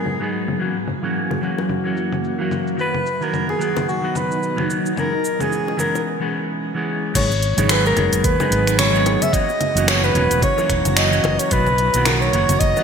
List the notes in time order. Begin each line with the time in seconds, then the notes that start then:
Already playing: G#2 F#3 G#3 B3 D#4 G#4
0.06 low conga, shaker
0.20 F#3 G#3 B3 D#4 G#4
0.33 shaker
0.48 low conga, shaker
0.59 F#2 E3 F#3 A#3 C#4 E4 F#4, shaker
0.88 low conga, shaker
1.02 E3 F#3 A#3 C#4 F#4, shaker
1.16 shaker
1.31 high bongo, low conga
1.41 E3 F#3 A#3 C#4 F#4, shaker
1.58 high bongo, shaker
1.69 low conga, shaker
1.84 E3 F#3 A#3 C#4 F#4
1.97 shaker
2.12 low conga, shaker
2.24 shaker
2.38 E3 F#3 A#3 C#4 F#4
2.51 low conga, shaker
2.67 shaker
2.77 B2 D#3 F#3 A#3 B3 D#4 F#4 B4 A#5, shaker
2.94 low conga
3.06 shaker
3.20 D#3 F#3 A#3 B3 F#4 A#4, shaker
3.34 low conga, shaker
3.49 G#4, high bongo
3.59 D#3 F#3 A#3 B3 F#4, shaker
3.77 high bongo, low conga, shaker
3.89 F#4, shaker
4.02 D#3 F#3 B3 F#4
4.15 B4, low conga, shaker
4.31 shaker
4.43 shaker
4.56 D#3 F#3 A#3 B3 F#4, low conga
4.70 shaker
4.86 shaker
4.96 E3 G#3 B3 C#4 G#4 A#4, low conga, shaker
5.25 shaker
5.39 E3 G#3 B3 C#4 G#4, low conga, shaker
5.52 shaker
5.68 high bongo
5.77 E3 G#3 B3 C#4 G#4 A#4, low conga, shaker
5.95 high bongo, shaker
6.20 E3 G#3 B3 C#4 G#4
6.74 E3 G#3 B3 C#4 G#4
7.14 G#1 F#3 G#3 B3 D#4 F#4 G#4 C#5, kick, closed hi-hat, crash, low conga, shaker
7.31 shaker
7.42 closed hi-hat
7.57 G#1 F#3 G#3 B3 D#4 G#4, closed hi-hat, low conga, shaker
7.69 B4, finger snap, closed hi-hat, high bongo, shaker
7.86 A#4, shaker
7.95 F#1 F#3 G#3 B3 D#4 G#4, closed hi-hat, low conga
8.13 F#1, closed hi-hat, shaker
8.24 D#2 B4, kick, closed hi-hat, shaker
8.38 F#3 G#3 B3 D#4 G#4, high bongo, low conga, shaker
8.51 G#1, closed hi-hat
8.67 finger snap, closed hi-hat, shaker
8.79 C#5, finger snap, closed hi-hat, low conga, shaker
8.92 F#3 G#3 B3 D#4 G#4, shaker
9.06 closed hi-hat, high bongo
9.22 E5, closed hi-hat, low conga, shaker
9.32 E3 F#3 A#3 C#4 E4 F#4 D#5 A#5, kick, closed hi-hat, shaker
9.49 shaker
9.61 closed hi-hat, low conga
9.75 F#1 E3 F#3 A#3 C#4 F#4, closed hi-hat, shaker
9.88 C#5, finger snap, closed hi-hat, high bongo, shaker
10.04 B4, low conga, shaker
10.13 E1 E3 F#3 A#3 C#4 F#4, closed hi-hat
10.31 E1, closed hi-hat, shaker
10.42 C#5, kick, closed hi-hat, low conga, shaker
10.57 E3 F#3 A#3 C#4 F#4, high bongo, shaker
10.69 E1, finger snap, kick, closed hi-hat
10.85 F#1, closed hi-hat, low conga, shaker
10.97 D#5, finger snap, closed hi-hat, shaker
11.11 E3 F#3 A#3 C#4 F#4, shaker
11.24 F#1, closed hi-hat, high bongo, low conga
11.39 C#5, closed hi-hat, shaker
11.50 B1 D#3 F#3 A#3 B3 D#4 F#4 B4 A#5, kick, closed hi-hat, shaker
11.67 low conga, shaker
11.78 closed hi-hat
11.94 B1 D#3 F#3 A#3 B3 F#4, closed hi-hat, shaker
12.05 A#4, finger snap, closed hi-hat, high bongo, low conga, shaker
12.21 C#5, shaker
12.33 F#1 D#3 F#3 A#3 B3 F#4, closed hi-hat
12.49 F#1, closed hi-hat, low conga, shaker
12.59 F#1 D#5, kick, closed hi-hat, shaker
12.76 D#3 F#3 A#3 B3 F#4, high bongo, shaker